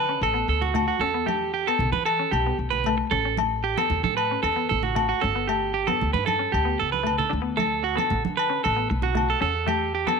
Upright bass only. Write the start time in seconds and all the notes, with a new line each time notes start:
Already playing: D3
0.21 A1
0.48 D2
0.99 E2
1.79 B1
1.92 E3
2.32 B1
2.59 B1
3.12 A1
3.90 E2
4.03 A2
4.43 E2
4.71 A1
5.24 G1
6.02 D2
6.14 G2
6.54 D2
6.81 C#2
7.33 D2
8.11 A1
8.25 D3
8.66 A1
8.91 B1
9.41 E2